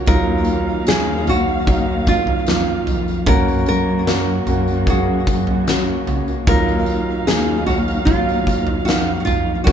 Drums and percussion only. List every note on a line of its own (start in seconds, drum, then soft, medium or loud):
0.06 kick loud
0.06 floor tom loud
0.06 tambourine soft
0.44 tambourine soft
0.87 snare loud
0.87 tambourine medium
1.27 floor tom medium
1.27 tambourine soft
1.67 kick medium
1.67 floor tom medium
1.67 tambourine soft
2.07 kick medium
2.07 tambourine soft
2.27 floor tom medium
2.47 snare loud
2.47 tambourine medium
2.87 floor tom medium
2.87 tambourine soft
3.08 tambourine soft
3.26 kick loud
3.26 floor tom loud
3.26 tambourine medium
3.48 tambourine soft
3.66 tambourine soft
4.07 snare loud
4.07 tambourine medium
4.47 floor tom medium
4.47 tambourine soft
4.68 tambourine soft
4.87 kick medium
4.87 floor tom medium
4.87 tambourine soft
5.27 kick medium
5.27 tambourine soft
5.47 floor tom medium
5.67 snare loud
5.67 tambourine medium
6.07 floor tom medium
6.07 tambourine soft
6.28 tambourine soft
6.47 kick loud
6.47 floor tom loud
6.47 tambourine medium
6.68 tambourine soft
6.86 tambourine soft
7.28 snare loud
7.28 tambourine medium
7.67 floor tom medium
7.67 tambourine soft
7.88 tambourine soft
8.07 kick medium
8.07 floor tom medium
8.07 tambourine soft
8.29 tambourine soft
8.47 kick medium
8.47 tambourine medium
8.67 floor tom medium
8.88 snare loud
8.88 tambourine medium
9.27 floor tom medium
9.27 tambourine soft
9.67 kick loud
9.67 floor tom loud
9.67 tambourine soft